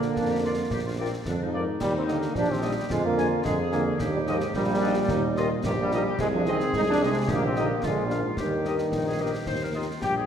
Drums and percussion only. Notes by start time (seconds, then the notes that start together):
0.02 snare
0.16 concert bass drum, snare
0.71 concert bass drum, snare
1.26 concert bass drum, snare
1.80 concert bass drum, snare, crash
2.08 snare
2.22 snare
2.35 concert bass drum, snare
2.90 concert bass drum, snare
3.18 snare
3.45 concert bass drum, snare
3.72 snare
3.99 concert bass drum, snare
4.27 snare
4.40 snare
4.54 concert bass drum, snare
5.08 concert bass drum, snare
5.36 snare
5.64 concert bass drum, snare
5.91 snare
6.19 concert bass drum, snare, crash
6.46 snare
6.60 snare
6.73 concert bass drum, snare
7.28 concert bass drum, snare
7.56 snare
7.83 concert bass drum, snare
8.10 snare
8.37 concert bass drum, snare
8.65 snare
8.78 snare
8.92 concert bass drum, snare
9.46 concert bass drum, snare
10.02 concert bass drum, snare